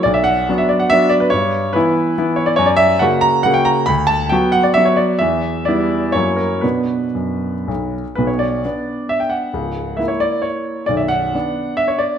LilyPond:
<<
  \new Staff \with { instrumentName = "Grand piano" } { \time 3/4 \key b \minor \tempo 4 = 135 d''16 e''16 fis''8. e''16 d''16 fis''16 e''8 d''16 b'16 | cis''4 b'4. cis''16 d''16 | cis''16 d''16 e''8 fis''8 ais''8 fis''16 g''16 ais''8 | b''8 a''8 g''8 fis''16 d''16 e''16 cis''16 d''8 |
e''4 d''4 cis''8 ais'8 | b'2~ b'8 r8 | b'16 cis''16 d''4. e''16 g''16 fis''8~ | fis''4 e''16 cis''16 d''8 cis''4 |
d''16 e''16 fis''4. e''16 cis''16 d''8 | }
  \new Staff \with { instrumentName = "Grand piano" } { \time 3/4 \key b \minor b,,4 <fis b d'>4 <fis b d'>4 | g,4 <e b e'>4 <e b e'>4 | fis,4 <cis ais fis'>4 <cis ais fis'>4 | d,4 <fis b fis'>4 <fis b fis'>4 |
e,4 <g b e'>4 <fis, fis ais e'>4 | <b, b d'>4 fis,4 b,,4 | <b,, b,>4 <b d'>2 | <cis,, cis,>4 <ais e'>2 |
<b,,, b,,>4 <b d'>2 | }
>>